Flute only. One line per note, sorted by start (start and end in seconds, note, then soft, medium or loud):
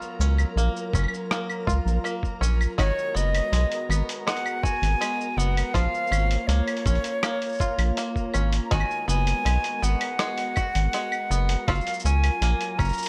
2.79 3.18 C#5 loud
3.16 3.90 D#5 loud
4.27 4.65 F#5 loud
4.63 5.39 G#5 loud
5.37 5.75 F#5 medium
5.74 6.49 F5 loud
6.47 8.34 C#5 medium
8.65 8.73 A#5 medium
8.71 9.09 G#5 loud
9.09 9.85 G#5 loud
9.84 11.69 F#5 medium
11.67 12.04 F5 medium
12.05 12.80 G#5 loud
12.78 13.09 A#5 loud